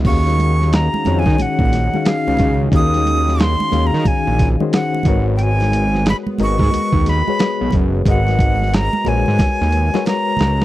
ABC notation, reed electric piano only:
X:1
M:4/4
L:1/16
Q:"Swing 16ths" 1/4=90
K:G#m
V:1 name="Reed electric piano"
[D,CFG^e]4- [D,CFGe] z [D,CFGc]4- [D,CFGc] [D,CFGe]4- [D,CFGe] | [D,CFG^e]4- [D,CFGe] z [D,CFGe]4- [D,CFGe] [D,CFG^B]3 [G,FA=Bc]2- | [G,FABc]4- [G,FABc] z [G,FABd]4- [G,FABd] [G,FGBc]4- [G,FGBc] | [G,FABd]4- [G,FABd] z [G,FABc]4- [G,FABc] [G,FABc]4- [G,FABc] |]